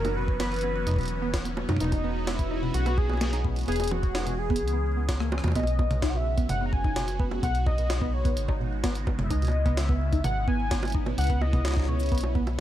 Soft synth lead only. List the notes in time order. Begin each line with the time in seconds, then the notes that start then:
Already playing: A#4
0.16 B4
0.40 B4
1.81 D#4
2.28 E4
2.74 F#4
2.98 G#4
3.68 G#4
3.92 F#4
4.39 G#4
5.56 D#5
6.02 E5
6.10 F#5
6.16 E5
6.49 F#5
6.66 A#5
6.73 G#5
7.43 F#5
7.67 D#5
8.13 C#5
9.24 E5
9.30 D#5
9.77 E5
10.24 F#5
10.48 G#5
11.18 F#5
11.41 D#5
11.88 C#5